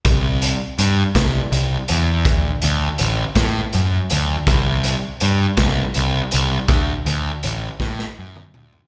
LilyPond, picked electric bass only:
\new Staff \with { instrumentName = "Picked electric bass" } { \clef bass \time 6/8 \key c \lydian \tempo 4. = 54 c,4 g,8 c,8 c,8 e,8 | d,8 d,8 a,,8 a,8 fis,8 d,8 | c,4 g,8 c,8 c,8 c,8 | d,8 d,8 a,,8 a,8 fis,8 d,8 | }